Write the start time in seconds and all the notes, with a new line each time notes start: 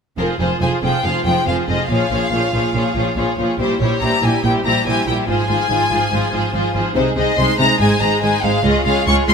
0.18 F1 F2 F3 F4 G#4 A#4 C5
0.39 F1 F2 F3 F4 G#4 C5
0.61 F1 F2 F3 F4 G#4 C5 G#5
0.82 F1 F2 F3 F4 G#4 C5 G5
1.04 F1 F2 F3 F4 G#4 C5 F5
1.25 F1 F2 F3 F4 G#4 C5 G5
1.47 F1 F2 F3 F4 G#4 C5 F5
1.68 F1 F2 F3 F4 G#4 C5 D#5
1.89 A#1 A#2 F3 F4 G#4 C#5 F5
2.11 A#1 A#2 F3 F4 G#4 C#5
2.31 A#1 A#2 F3 F4 G#4 C#5
2.53 A#1 A#2 F3 F4 G#4 C#5
2.74 A#1 A#2 F3 F4 G#4 C#5
2.95 A#1 A#2 F3 F4 G#4 C#5
3.16 A#1 A#2 F3 F4 G#4 C#5
3.37 A#1 A#2 F3 F4 G#4 C#5
3.59 A#1 A#2 G3 E4 G4 C5
3.80 A#1 A#2 G3 E4 G4 C5 C#5
4.01 A#1 A#2 G3 E4 G4 C5 A#5
4.22 A#1 A#2 G3 E4 G4 C5 G#5
4.44 A#1 A#2 G3 E4 G4 C5 G5
4.65 A#1 A#2 G3 E4 G4 C5 A#5
4.86 A#1 A#2 G3 E4 G4 C5 G#5
5.07 A#1 A#2 G3 E4 G4 C5 G5
5.28 G#1 G#2 F3 F4 G#4 C5 G#5
5.49 G#1 G#2 F3 F4 G#4 C5
5.70 G#1 G#2 F3 F4 G#4 C5
5.91 G#1 G#2 F3 F4 G#4 C5
6.11 G#1 G#2 F3 F4 G#4 C5
6.32 G#1 G#2 F3 F4 G#4 C5
6.53 G#1 G#2 F3 F4 G#4 C5
6.74 G#1 G#2 F3 F4 G#4 C5
6.95 C2 C3 G#3 D#4 G#4 C5
7.16 C2 C3 G#3 D#4 G#4 C5 D#5
7.37 C2 C3 G#3 D#4 G#4 C5 C6
7.58 C2 C3 G#3 D#4 G#4 C5 A#5
7.79 G#1 G#2 G#3 D#4 G#4 C5 G#5
8.01 G#1 G#2 G#3 D#4 G#4 C5 A#5
8.22 G#1 G#2 G#3 D#4 G#4 C5 G#5
8.43 G#1 G#2 G#3 D#4 G#4 C5 F5
8.64 C#2 G#3 F4 G#4 C#5 D#5
8.85 C#2 G#3 F4 G#4 C#5 F5
9.07 C#2 G#3 F4 G#4 C#5 C#6
9.28 C#2 G#3 F4 G#4 C#5 C6